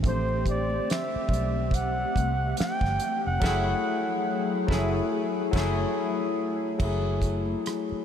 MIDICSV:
0, 0, Header, 1, 8, 480
1, 0, Start_track
1, 0, Tempo, 845070
1, 22, Time_signature, 4, 2, 24, 8
1, 4571, End_track
2, 0, Start_track
2, 0, Title_t, "Flugelhorn"
2, 0, Program_c, 0, 56
2, 39, Note_on_c, 0, 72, 97
2, 254, Note_off_c, 0, 72, 0
2, 279, Note_on_c, 0, 74, 89
2, 494, Note_off_c, 0, 74, 0
2, 519, Note_on_c, 0, 76, 80
2, 993, Note_on_c, 0, 78, 94
2, 1002, Note_off_c, 0, 76, 0
2, 1467, Note_off_c, 0, 78, 0
2, 1472, Note_on_c, 0, 79, 105
2, 1825, Note_off_c, 0, 79, 0
2, 1854, Note_on_c, 0, 78, 101
2, 2545, Note_off_c, 0, 78, 0
2, 4571, End_track
3, 0, Start_track
3, 0, Title_t, "Tine electric piano"
3, 0, Program_c, 1, 4
3, 0, Control_c, 1, 64, 127
3, 15, Note_on_c, 1, 57, 69
3, 26, Note_on_c, 1, 60, 62
3, 30, Control_c, 1, 64, 0
3, 38, Note_on_c, 1, 67, 64
3, 51, Note_on_c, 1, 72, 76
3, 142, Control_c, 1, 64, 127
3, 1915, Note_off_c, 1, 57, 0
3, 1921, Note_off_c, 1, 60, 0
3, 1927, Note_off_c, 1, 67, 0
3, 1930, Note_on_c, 1, 54, 104
3, 1934, Note_off_c, 1, 72, 0
3, 1943, Note_on_c, 1, 57, 109
3, 1948, Control_c, 1, 64, 0
3, 1955, Note_on_c, 1, 64, 102
3, 1967, Note_on_c, 1, 68, 97
3, 2056, Control_c, 1, 64, 127
3, 2105, Note_off_c, 1, 54, 0
3, 2113, Note_off_c, 1, 57, 0
3, 2119, Note_off_c, 1, 64, 0
3, 2127, Note_off_c, 1, 68, 0
3, 2652, Note_on_c, 1, 54, 80
3, 2664, Note_on_c, 1, 57, 86
3, 2676, Note_on_c, 1, 64, 86
3, 2688, Note_on_c, 1, 68, 95
3, 2827, Note_off_c, 1, 54, 0
3, 2833, Note_off_c, 1, 57, 0
3, 2840, Note_off_c, 1, 64, 0
3, 2847, Note_off_c, 1, 68, 0
3, 3130, Note_on_c, 1, 54, 92
3, 3143, Note_on_c, 1, 57, 90
3, 3155, Note_on_c, 1, 64, 91
3, 3168, Note_on_c, 1, 68, 100
3, 3305, Note_off_c, 1, 54, 0
3, 3313, Note_off_c, 1, 57, 0
3, 3320, Note_off_c, 1, 64, 0
3, 3327, Note_off_c, 1, 68, 0
3, 3852, Note_on_c, 1, 54, 70
3, 3864, Note_on_c, 1, 57, 63
3, 3868, Control_c, 1, 64, 0
3, 3876, Note_on_c, 1, 64, 67
3, 3888, Note_on_c, 1, 68, 86
3, 3986, Control_c, 1, 64, 127
3, 4571, Note_off_c, 1, 54, 0
3, 4571, Note_off_c, 1, 57, 0
3, 4571, Note_off_c, 1, 64, 0
3, 4571, Note_off_c, 1, 68, 0
3, 4571, End_track
4, 0, Start_track
4, 0, Title_t, "Horn section"
4, 0, Program_c, 2, 61
4, 1943, Note_on_c, 2, 57, 90
4, 1943, Note_on_c, 2, 61, 88
4, 1943, Note_on_c, 2, 64, 101
4, 2070, Note_off_c, 2, 57, 0
4, 2070, Note_off_c, 2, 61, 0
4, 2070, Note_off_c, 2, 64, 0
4, 2661, Note_on_c, 2, 57, 84
4, 2661, Note_on_c, 2, 61, 85
4, 2662, Note_on_c, 2, 64, 89
4, 2789, Note_off_c, 2, 57, 0
4, 2789, Note_off_c, 2, 61, 0
4, 2789, Note_off_c, 2, 64, 0
4, 3140, Note_on_c, 2, 61, 77
4, 3141, Note_on_c, 2, 57, 72
4, 3141, Note_on_c, 2, 64, 73
4, 3268, Note_off_c, 2, 61, 0
4, 3269, Note_off_c, 2, 57, 0
4, 3269, Note_off_c, 2, 64, 0
4, 4571, End_track
5, 0, Start_track
5, 0, Title_t, "Analog synth pad"
5, 0, Program_c, 3, 89
5, 0, Note_on_c, 3, 60, 82
5, 22, Note_on_c, 3, 57, 82
5, 23, Note_on_c, 3, 67, 77
5, 1921, Note_off_c, 3, 60, 0
5, 1923, Note_off_c, 3, 57, 0
5, 1923, Note_off_c, 3, 67, 0
5, 1940, Note_on_c, 3, 64, 78
5, 1941, Note_on_c, 3, 54, 73
5, 1941, Note_on_c, 3, 68, 74
5, 1942, Note_on_c, 3, 57, 76
5, 3842, Note_off_c, 3, 54, 0
5, 3842, Note_off_c, 3, 64, 0
5, 3842, Note_off_c, 3, 68, 0
5, 3843, Note_off_c, 3, 57, 0
5, 4571, End_track
6, 0, Start_track
6, 0, Title_t, "Fingered electric bass"
6, 0, Program_c, 4, 33
6, 29, Note_on_c, 4, 33, 115
6, 444, Note_off_c, 4, 33, 0
6, 739, Note_on_c, 4, 35, 99
6, 1158, Note_off_c, 4, 35, 0
6, 1232, Note_on_c, 4, 36, 82
6, 1437, Note_off_c, 4, 36, 0
6, 1604, Note_on_c, 4, 31, 85
6, 1690, Note_off_c, 4, 31, 0
6, 1856, Note_on_c, 4, 29, 82
6, 1937, Note_off_c, 4, 29, 0
6, 1948, Note_on_c, 4, 30, 105
6, 2116, Note_off_c, 4, 30, 0
6, 2669, Note_on_c, 4, 30, 98
6, 2836, Note_off_c, 4, 30, 0
6, 3149, Note_on_c, 4, 30, 91
6, 3316, Note_off_c, 4, 30, 0
6, 3868, Note_on_c, 4, 30, 110
6, 4284, Note_off_c, 4, 30, 0
6, 4571, End_track
7, 0, Start_track
7, 0, Title_t, "Muted fingered electric bass strokes"
7, 658, Note_on_c, 9, 29, 51
7, 714, Note_off_c, 9, 29, 0
7, 1477, Note_on_c, 9, 29, 54
7, 1534, Note_off_c, 9, 29, 0
7, 4498, Note_on_c, 9, 29, 45
7, 4555, Note_off_c, 9, 29, 0
7, 4571, End_track
8, 0, Start_track
8, 0, Title_t, "Drums"
8, 21, Note_on_c, 9, 64, 66
8, 22, Note_on_c, 9, 36, 122
8, 29, Note_on_c, 9, 42, 67
8, 78, Note_off_c, 9, 36, 0
8, 78, Note_off_c, 9, 64, 0
8, 86, Note_off_c, 9, 42, 0
8, 162, Note_on_c, 9, 62, 33
8, 219, Note_off_c, 9, 62, 0
8, 259, Note_on_c, 9, 36, 76
8, 260, Note_on_c, 9, 63, 44
8, 264, Note_on_c, 9, 42, 54
8, 316, Note_off_c, 9, 36, 0
8, 317, Note_off_c, 9, 63, 0
8, 320, Note_off_c, 9, 42, 0
8, 398, Note_on_c, 9, 63, 64
8, 455, Note_off_c, 9, 63, 0
8, 498, Note_on_c, 9, 62, 31
8, 511, Note_on_c, 9, 42, 83
8, 519, Note_on_c, 9, 38, 94
8, 525, Note_on_c, 9, 26, 82
8, 554, Note_off_c, 9, 62, 0
8, 568, Note_off_c, 9, 42, 0
8, 575, Note_off_c, 9, 38, 0
8, 581, Note_off_c, 9, 26, 0
8, 641, Note_on_c, 9, 62, 30
8, 698, Note_off_c, 9, 62, 0
8, 731, Note_on_c, 9, 36, 81
8, 738, Note_on_c, 9, 64, 74
8, 758, Note_on_c, 9, 42, 53
8, 788, Note_off_c, 9, 36, 0
8, 795, Note_off_c, 9, 64, 0
8, 815, Note_off_c, 9, 42, 0
8, 972, Note_on_c, 9, 36, 78
8, 984, Note_on_c, 9, 62, 31
8, 988, Note_on_c, 9, 42, 69
8, 1029, Note_off_c, 9, 36, 0
8, 1041, Note_off_c, 9, 62, 0
8, 1045, Note_off_c, 9, 42, 0
8, 1225, Note_on_c, 9, 36, 80
8, 1227, Note_on_c, 9, 63, 74
8, 1233, Note_on_c, 9, 42, 60
8, 1282, Note_off_c, 9, 36, 0
8, 1283, Note_off_c, 9, 63, 0
8, 1290, Note_off_c, 9, 42, 0
8, 1460, Note_on_c, 9, 42, 84
8, 1479, Note_on_c, 9, 38, 114
8, 1485, Note_on_c, 9, 26, 83
8, 1517, Note_off_c, 9, 42, 0
8, 1536, Note_off_c, 9, 38, 0
8, 1542, Note_off_c, 9, 26, 0
8, 1597, Note_on_c, 9, 36, 90
8, 1597, Note_on_c, 9, 64, 52
8, 1618, Note_on_c, 9, 38, 32
8, 1653, Note_off_c, 9, 64, 0
8, 1654, Note_off_c, 9, 36, 0
8, 1675, Note_off_c, 9, 38, 0
8, 1702, Note_on_c, 9, 42, 70
8, 1706, Note_on_c, 9, 63, 76
8, 1759, Note_off_c, 9, 42, 0
8, 1763, Note_off_c, 9, 63, 0
8, 1939, Note_on_c, 9, 49, 74
8, 1941, Note_on_c, 9, 36, 106
8, 1955, Note_on_c, 9, 38, 97
8, 1996, Note_off_c, 9, 49, 0
8, 1998, Note_off_c, 9, 36, 0
8, 2012, Note_off_c, 9, 38, 0
8, 2661, Note_on_c, 9, 36, 104
8, 2676, Note_on_c, 9, 38, 93
8, 2718, Note_off_c, 9, 36, 0
8, 2732, Note_off_c, 9, 38, 0
8, 3141, Note_on_c, 9, 49, 75
8, 3142, Note_on_c, 9, 36, 104
8, 3157, Note_on_c, 9, 38, 91
8, 3198, Note_off_c, 9, 49, 0
8, 3199, Note_off_c, 9, 36, 0
8, 3214, Note_off_c, 9, 38, 0
8, 3858, Note_on_c, 9, 62, 28
8, 3858, Note_on_c, 9, 64, 62
8, 3861, Note_on_c, 9, 36, 114
8, 3862, Note_on_c, 9, 49, 76
8, 3915, Note_off_c, 9, 62, 0
8, 3915, Note_off_c, 9, 64, 0
8, 3918, Note_off_c, 9, 36, 0
8, 3919, Note_off_c, 9, 49, 0
8, 3998, Note_on_c, 9, 62, 26
8, 4055, Note_off_c, 9, 62, 0
8, 4095, Note_on_c, 9, 63, 44
8, 4099, Note_on_c, 9, 36, 77
8, 4104, Note_on_c, 9, 42, 54
8, 4152, Note_off_c, 9, 63, 0
8, 4155, Note_off_c, 9, 36, 0
8, 4160, Note_off_c, 9, 42, 0
8, 4235, Note_on_c, 9, 63, 56
8, 4292, Note_off_c, 9, 63, 0
8, 4335, Note_on_c, 9, 62, 31
8, 4351, Note_on_c, 9, 42, 79
8, 4358, Note_on_c, 9, 37, 98
8, 4391, Note_off_c, 9, 62, 0
8, 4407, Note_off_c, 9, 42, 0
8, 4415, Note_off_c, 9, 37, 0
8, 4483, Note_on_c, 9, 62, 28
8, 4540, Note_off_c, 9, 62, 0
8, 4571, End_track
0, 0, End_of_file